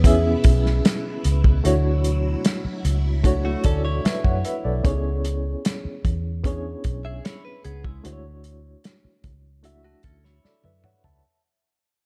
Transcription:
0.00 0.34 E2 medium
0.00 4.80 B2 medium
0.00 0.04 B3 medium
0.00 1.61 B3 medium
0.00 1.49 B3 medium
0.00 0.04 C#4 medium
0.00 0.05 E4 medium
0.00 1.61 E4 medium
0.00 0.06 G#4 medium
0.00 1.66 C#5 loud
0.04 1.50 C#4 medium
0.04 1.50 E4 medium
0.04 1.50 G#4 medium
0.04 1.51 E5 loud
0.04 kick loud
0.04 closed hi-hat medium
0.44 0.80 B1 medium
0.44 kick medium
0.44 closed hi-hat medium
0.66 snare soft
0.85 snare loud
0.85 closed hi-hat medium
1.24 1.60 C#2 medium
1.24 closed hi-hat medium
1.44 kick loud
1.64 2.34 D2 loud
1.64 4.81 F#3 medium
1.64 3.09 A3 medium
1.64 3.10 D4 medium
1.64 4.81 E4 medium
1.64 3.10 E4 medium
1.64 3.10 F#4 medium
1.64 3.11 C#5 medium
1.64 closed hi-hat medium
2.04 closed hi-hat medium
2.45 snare loud
2.45 closed hi-hat loud
2.65 muted fingered electric bass stroke soft
2.85 3.54 C#2 medium
2.85 closed hi-hat medium
3.24 4.69 A3 medium
3.24 4.70 D4 medium
3.24 4.70 E4 medium
3.24 4.70 F#4 medium
3.24 3.65 C#5 medium
3.24 kick medium
3.24 closed hi-hat medium
3.45 3.64 A3 medium
3.45 3.64 F#4 medium
3.64 3.99 D2 medium
3.64 3.84 C#4 medium
3.64 3.84 A4 medium
3.64 4.03 A4 medium
3.64 4.02 D5 medium
3.64 kick loud
3.64 closed hi-hat medium
3.85 4.81 E4 medium
3.85 4.80 C#5 medium
4.05 4.24 B4 medium
4.05 4.23 E5 medium
4.05 snare loud
4.05 closed hi-hat medium
4.24 4.42 F#2 medium
4.24 4.44 C#5 medium
4.24 4.43 F#5 medium
4.24 kick medium
4.45 4.64 B4 medium
4.45 4.64 E5 medium
4.45 closed hi-hat medium
4.65 4.82 B1 medium
4.65 5.03 A4 medium
4.65 5.02 D5 medium
4.84 5.54 C#2 loud
4.84 6.29 B3 medium
4.84 6.29 C#4 medium
4.84 4.91 D#4 medium
4.84 6.30 G#4 medium
4.84 6.30 C#5 medium
4.84 kick loud
4.84 closed hi-hat loud
4.91 6.33 E4 medium
5.25 closed hi-hat medium
5.65 snare loud
5.65 closed hi-hat loud
5.85 muted fingered electric bass stroke medium
6.05 6.74 E2 medium
6.05 kick medium
6.05 closed hi-hat medium
6.44 7.89 B3 medium
6.44 7.90 C#4 medium
6.44 6.51 D4 medium
6.44 7.90 G#4 medium
6.44 7.90 C#5 medium
6.44 kick medium
6.44 closed hi-hat medium
6.51 7.93 E4 medium
6.84 7.19 B1 medium
6.84 kick medium
6.84 closed hi-hat medium
7.05 7.24 G#4 medium
7.05 7.23 E5 medium
7.25 7.44 E4 medium
7.25 7.43 C#5 medium
7.25 snare loud
7.25 closed hi-hat medium
7.45 7.63 B4 medium
7.64 7.99 C#2 medium
7.64 7.84 B3 medium
7.64 7.83 G#4 medium
7.64 closed hi-hat medium
7.84 8.23 G#3 medium
7.84 8.22 E4 medium
7.84 kick loud
8.04 8.74 D2 medium
8.04 9.49 A3 medium
8.04 9.49 D4 medium
8.04 9.50 E4 medium
8.04 9.50 F#4 medium
8.04 8.12 C5 medium
8.04 closed hi-hat loud
8.13 9.54 C#5 loud
8.44 closed hi-hat medium
8.84 snare loud
8.84 closed hi-hat loud
9.05 muted fingered electric bass stroke soft
9.24 9.94 C#2 medium
9.24 kick medium
9.24 closed hi-hat medium
9.63 11.09 A3 medium
9.63 11.09 D4 medium
9.63 11.09 E4 medium
9.63 11.10 F#4 medium
9.63 10.05 E5 medium
9.63 closed hi-hat medium
9.84 10.04 A3 medium
9.84 10.03 F#4 medium
10.03 10.39 D2 medium
10.03 10.23 C#4 medium
10.03 10.23 A4 medium
10.03 kick medium
10.03 closed hi-hat medium
10.24 11.20 E4 medium
10.24 11.20 C#5 medium
10.24 snare soft
10.44 10.63 A4 medium
10.44 10.63 D5 medium
10.44 muted fingered electric bass stroke soft
10.44 snare medium
10.64 10.81 F#2 medium
10.64 10.84 B4 medium
10.64 10.83 E5 medium
10.64 high tom medium
10.84 11.04 C#5 medium
10.84 11.03 F#5 medium
10.84 mid tom medium
11.04 11.21 C#2 medium
11.04 11.42 E5 soft
11.04 11.42 A5 medium
11.04 floor tom medium

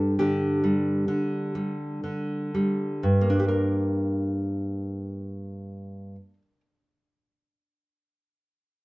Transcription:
0.00 1.04 G2 medium
0.00 0.62 G3 soft
0.00 0.14 D4 medium
0.00 0.14 A4 medium
0.19 1.07 D3 soft
0.19 2.50 D4 soft
0.19 2.49 G4 medium
0.64 1.54 G3 soft
1.08 2.02 D3 soft
1.55 2.53 G3 soft
2.04 3.02 D3 soft
2.54 3.03 G3 soft
3.03 6.15 G2 medium
3.21 6.33 A#3 soft
3.30 6.42 D4 soft
3.39 3.48 G4 soft
3.48 6.60 A#4 soft

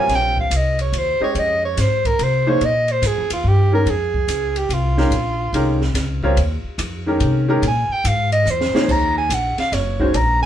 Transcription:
0.00 0.49 C3 medium
0.00 0.49 G3 medium
0.00 0.49 F4 medium
0.00 0.49 A#4 medium
0.00 0.49 C#5 medium
0.00 0.17 G#5 loud
0.08 0.49 A#1 medium
0.08 snare soft
0.08 ride soft
0.15 0.40 G5 medium
0.37 0.58 F5 medium
0.37 kick soft
0.50 0.92 C2 medium
0.50 hi-hat pedal soft
0.50 ride medium
0.57 0.81 D#5 medium
0.79 1.00 C#5 medium
0.79 ride soft
0.92 1.18 D#2 medium
0.92 ride medium
0.98 1.23 C5 medium
1.20 1.74 G#3 medium
1.20 1.74 C#4 medium
1.20 1.75 G4 medium
1.20 1.75 C5 medium
1.20 1.40 C#5 medium
1.20 1.75 D#5 medium
1.20 muted upright bass stroke soft
1.35 1.76 F2 medium
1.35 ride soft
1.39 1.65 D#5 medium
1.65 1.82 C#5 medium
1.77 2.18 G#2 medium
1.77 2.08 C5 medium
1.77 snare soft
1.77 hi-hat pedal medium
1.77 ride medium
2.05 2.25 A#4 medium
2.05 kick medium
2.05 ride soft
2.19 2.60 C3 medium
2.19 ride medium
2.24 2.51 C5 medium
2.47 2.60 F3 medium
2.47 2.60 A#3 medium
2.47 2.60 D#4 medium
2.47 2.60 G#4 medium
2.47 2.60 C5 medium
2.47 2.67 C#5 medium
2.61 3.01 A#2 medium
2.61 ride soft
2.65 2.93 D#5 medium
2.88 3.08 C5 medium
2.88 ride soft
3.02 3.17 G#2 medium
3.02 hi-hat pedal medium
3.02 ride medium
3.07 3.32 G#4 medium
3.17 3.30 F2 medium
3.30 3.44 D#2 medium
3.30 3.50 F4 medium
3.30 ride medium
3.44 3.85 G2 medium
3.48 3.74 G4 medium
3.72 3.85 D#3 medium
3.72 3.85 G#3 medium
3.72 3.85 C#4 medium
3.72 3.85 G4 medium
3.72 3.86 A#4 medium
3.72 3.91 A#4 medium
3.86 4.27 F2 medium
3.86 ride medium
3.90 4.60 G#4 medium
4.14 kick soft
4.28 4.69 C#2 medium
4.28 hi-hat pedal medium
4.28 ride medium
4.56 4.75 G4 medium
4.56 ride soft
4.69 5.10 C2 medium
4.69 ride medium
4.74 5.97 F4 medium
4.97 5.10 D#3 medium
4.97 5.11 G#3 medium
4.97 5.11 C#4 medium
4.97 5.11 G4 medium
4.97 5.11 A#4 medium
4.97 snare soft
5.10 5.52 A#1 medium
5.10 ride medium
5.53 5.94 C2 medium
5.53 5.78 D#3 medium
5.53 5.79 G#3 medium
5.53 5.79 C#4 medium
5.53 5.79 G4 medium
5.53 5.79 A#4 medium
5.53 ride medium
5.81 snare soft
5.94 6.35 C#2 medium
5.94 snare soft
5.94 hi-hat pedal medium
5.94 ride medium
6.23 6.36 G3 medium
6.23 6.36 C4 medium
6.23 6.36 F4 medium
6.23 6.37 A#4 medium
6.23 6.37 C#5 medium
6.23 kick soft
6.36 6.62 D#2 medium
6.36 ride medium
6.64 muted upright bass stroke soft
6.78 7.19 F2 medium
6.78 hi-hat pedal medium
6.78 ride medium
7.06 7.46 D#3 medium
7.06 7.46 G#3 medium
7.06 7.46 C#4 medium
7.06 7.46 G4 medium
7.06 7.46 A#4 medium
7.20 7.61 C3 medium
7.20 ride medium
7.48 7.61 D#3 medium
7.48 7.61 G#3 medium
7.48 7.61 C#4 medium
7.48 7.62 G4 medium
7.48 7.62 A#4 medium
7.62 7.88 A#2 medium
7.62 ride medium
7.68 7.94 G#5 medium
7.89 8.09 G5 medium
7.89 muted upright bass stroke soft
8.04 8.45 G#2 medium
8.04 8.32 F5 medium
8.04 hi-hat pedal medium
8.04 ride medium
8.32 8.52 D#5 medium
8.32 ride soft
8.46 8.71 E2 medium
8.46 hi-hat pedal medium
8.50 8.93 C5 medium
8.61 snare medium
8.73 9.27 F3 medium
8.73 9.27 A#3 medium
8.73 9.27 D#4 medium
8.73 9.27 G#4 medium
8.73 9.28 C#5 medium
8.73 muted upright bass stroke soft
8.73 snare medium
8.88 9.29 D#2 medium
8.88 9.17 A#5 medium
8.88 kick medium
8.88 crash medium
9.18 9.36 G#5 medium
9.29 9.55 A#1 medium
9.29 hi-hat pedal medium
9.29 ride medium
9.34 9.59 F#5 medium
9.58 9.75 F5 medium
9.58 muted upright bass stroke soft
9.58 snare soft
9.58 ride soft
9.72 10.12 F#1 medium
9.72 10.18 C#5 medium
9.72 snare soft
9.72 ride medium
9.99 10.12 D#3 medium
9.99 10.12 G#3 medium
9.99 10.12 C#4 medium
9.99 10.13 F#4 medium
9.99 10.13 C5 medium
9.99 kick soft
10.13 10.46 A#1 medium
10.13 10.42 A#5 medium
10.13 ride medium
10.42 snare soft

